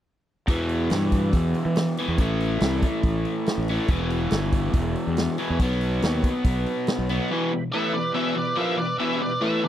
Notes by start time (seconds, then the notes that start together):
0.47 E2 B2 E3, kick, open hi-hat
0.69 open hi-hat
0.90 G2, snare, open hi-hat
1.12 kick, open hi-hat
1.33 E2, kick, open hi-hat
1.54 open hi-hat
1.65 E3
1.76 snare, open hi-hat
1.97 E2 B2 E3, open hi-hat
2.08 E2
2.18 A1 A2 E3 A3, kick, open hi-hat
2.40 open hi-hat
2.60 C2, snare, open hi-hat
2.82 kick, open hi-hat
3.03 A1, kick, open hi-hat
3.25 open hi-hat
3.46 snare, open hi-hat
3.58 A1
3.68 A2 E3 A3, open hi-hat
3.88 E1 E2 B2 E3, kick, open hi-hat
4.10 open hi-hat
4.31 G1, snare, open hi-hat
4.52 kick, open hi-hat
4.73 E1, kick, open hi-hat
4.96 open hi-hat
5.07 E2
5.17 snare, open hi-hat
5.38 E2 B2 E3, open hi-hat
5.50 E2
5.59 B1 B2 F#3 B3, kick, open hi-hat
5.71 snare
5.81 open hi-hat
6.02 D#2, snare, open hi-hat
6.23 kick, open hi-hat
6.44 B1, kick, open hi-hat
6.66 open hi-hat
6.87 snare, open hi-hat
6.99 B1
7.09 B2 F#3 B3, open hi-hat
7.29 E2 B2 E3 B3 E4 G4 B4
7.53 E2 B2
7.72 A2 E3 A3 B3 E4 G4 B4 E5
7.94 E2 B2 B4 D5
8.14 E2 B2 E3 B4 E5
8.35 E2 B2 B3 E4 G4 B4 D5
8.56 A#2 F3 A#3 B4 E5
8.77 E2 B2 B4 D5
8.98 E2 B2 E3 B3 E4 G4 B4 E5
9.21 E2 B2 B4 D5
9.40 A2 E3 A3 B3 E4 G4 B4
9.44 E5
9.64 E2 B2 B4 D5